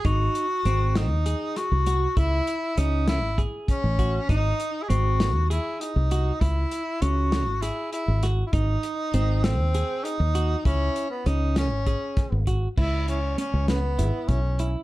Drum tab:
CC |-------|-------|-------|-------|
HH |xxxxxxx|xxxxxxx|xxxxxxx|xxxxxxx|
SD |---o-o-|---o---|---o---|---o--o|
BD |o------|o---ooo|o------|o------|

CC |-------|-------|x------|
HH |xxxxxxx|xxxxxxx|-xxxxxx|
SD |---o---|---o-o-|---o---|
BD |o------|o---ooo|o----o-|